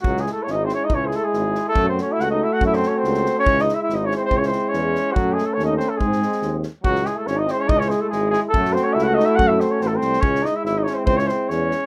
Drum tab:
SD |-oo-o-o-|--o-o-o-|--o-o---|-oo-ooo-|
BD |o-------|o-------|o-------|o-------|

SD |-oo-o-o-|-oo-o-o-|--o-o-o-|-oooo-o-|
BD |o-------|o-------|o-------|o-------|

SD |-oo-o-o-|-oo-o-o-|-oo-o-o-|--o-o-oo|
BD |o-------|o-------|o-------|o-------|

SD |-oo-o-o-|-oo-o-o-|
BD |o-------|o-------|